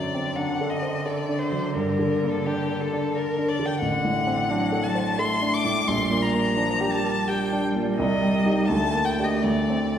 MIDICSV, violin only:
0, 0, Header, 1, 2, 480
1, 0, Start_track
1, 0, Key_signature, -2, "minor"
1, 0, Tempo, 693642
1, 1210, Time_signature, 3, 2, 24, 8
1, 2183, Tempo, 667408
1, 3143, Tempo, 691244
1, 4583, Tempo, 708383
1, 6023, Tempo, 761421
1, 6840, End_track
2, 0, Start_track
2, 0, Title_t, "Violin"
2, 0, Program_c, 0, 40
2, 0, Note_on_c, 0, 74, 38
2, 251, Note_on_c, 0, 78, 44
2, 261, Note_off_c, 0, 74, 0
2, 484, Note_on_c, 0, 75, 38
2, 495, Note_off_c, 0, 78, 0
2, 730, Note_on_c, 0, 74, 35
2, 740, Note_off_c, 0, 75, 0
2, 962, Note_on_c, 0, 72, 40
2, 973, Note_off_c, 0, 74, 0
2, 1209, Note_off_c, 0, 72, 0
2, 1211, Note_on_c, 0, 70, 42
2, 1589, Note_on_c, 0, 69, 39
2, 1600, Note_off_c, 0, 70, 0
2, 1703, Note_on_c, 0, 67, 44
2, 1713, Note_off_c, 0, 69, 0
2, 1944, Note_on_c, 0, 69, 42
2, 1954, Note_off_c, 0, 67, 0
2, 2183, Note_on_c, 0, 70, 46
2, 2193, Note_off_c, 0, 69, 0
2, 2420, Note_on_c, 0, 74, 46
2, 2431, Note_off_c, 0, 70, 0
2, 2545, Note_on_c, 0, 79, 45
2, 2556, Note_off_c, 0, 74, 0
2, 2652, Note_off_c, 0, 79, 0
2, 2656, Note_on_c, 0, 78, 53
2, 3384, Note_on_c, 0, 81, 48
2, 3394, Note_off_c, 0, 78, 0
2, 3627, Note_on_c, 0, 84, 55
2, 3638, Note_off_c, 0, 81, 0
2, 3872, Note_on_c, 0, 86, 58
2, 3882, Note_off_c, 0, 84, 0
2, 4105, Note_on_c, 0, 84, 56
2, 4115, Note_off_c, 0, 86, 0
2, 4346, Note_on_c, 0, 82, 58
2, 4356, Note_off_c, 0, 84, 0
2, 4817, Note_on_c, 0, 81, 58
2, 4827, Note_off_c, 0, 82, 0
2, 5066, Note_on_c, 0, 79, 52
2, 5076, Note_off_c, 0, 81, 0
2, 5307, Note_off_c, 0, 79, 0
2, 5537, Note_on_c, 0, 75, 50
2, 5992, Note_off_c, 0, 75, 0
2, 6019, Note_on_c, 0, 81, 65
2, 6250, Note_on_c, 0, 79, 49
2, 6259, Note_off_c, 0, 81, 0
2, 6368, Note_on_c, 0, 75, 45
2, 6378, Note_off_c, 0, 79, 0
2, 6491, Note_on_c, 0, 74, 41
2, 6500, Note_off_c, 0, 75, 0
2, 6840, Note_off_c, 0, 74, 0
2, 6840, End_track
0, 0, End_of_file